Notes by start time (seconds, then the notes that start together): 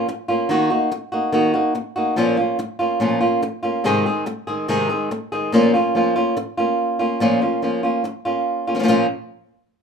0.08 muted nylon-string guitar stroke
0.28 A#3 C#4 F4
0.49 D#3 A#3 D#4 F#4
0.70 A#3 D#4 F#4
0.91 muted nylon-string guitar stroke
1.12 A#3 D#4 F#4
1.32 D#3 A#3 D#4 F#4
1.54 A#3 D#4 F#4
1.75 muted nylon-string guitar stroke
1.96 A#3 D#4 F#4
2.16 A#2 F3 A#3 C#4 F4
2.37 A#3 C#4 F4
2.59 muted nylon-string guitar stroke
2.79 A#3 C#4 F4
3.00 A#2 F3 A#3 C#4 F4
3.20 A#3 C#4 F4
3.42 muted nylon-string guitar stroke
3.63 A#3 C#4 F4
3.84 G#2 C3 D#3 G#3 C4 G#4
4.06 D#3 G#3 C4 G#4
4.26 muted nylon-string guitar stroke
4.47 D#3 G#3 C4 G#4
4.68 G#2 C3 D#3 G#3 C4 G#4
4.89 D#3 G#3 C4 G#4
5.11 muted nylon-string guitar stroke
5.32 D#3 G#3 C4 G#4
5.52 A#2 F3 A#3 C#4 F4
5.74 A#3 C#4 F4
5.95 F3 A#3 C#4 F4
6.16 A#3 C#4 F4
6.37 muted nylon-string guitar stroke
6.57 A#3 C#4 F4
6.99 A#3 C#4 F4
7.20 A#2 F3 A#3 C#4 F4
7.41 A#3 C#4 F4
7.62 F3 A#3 C#4 F4
7.83 A#3 C#4 F4
8.04 muted nylon-string guitar stroke
8.25 A#3 C#4 F4
8.67 A#3 C#4 F4
8.75 F3 A#3 C#4 F4
8.79 F3 A#3 C#4 F4
8.83 F3 A#3 C#4 F4
8.88 A#2 F3 A#3 C#4 F4